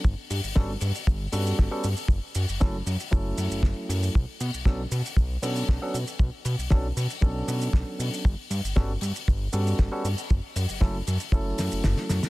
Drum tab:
HH |--o---o---o---o-|--o---o---o---o-|--o---o---o---o-|--o---o---o---o-|
SH |x-xxx-xxx-xxx-xx|x-xxx-xxx-xxx-xx|x-xxx-xxx-xxx-xx|x-xxx-xxx-xxx-xx|
SD |----o-------o---|----o-------o---|----o-------o---|----o-------o---|
BD |o---o---o---o---|o---o---o---o---|o---o---o---o---|o---o---o---o---|

HH |--o---o---o---o-|--o---o---o---o-|
SH |x-xxx-xxx-xxx-xx|x-xxx-xxx-xxx-xx|
SD |----o-------o---|----o-----o-oooo|
BD |o---o---o---o---|o---o---o-------|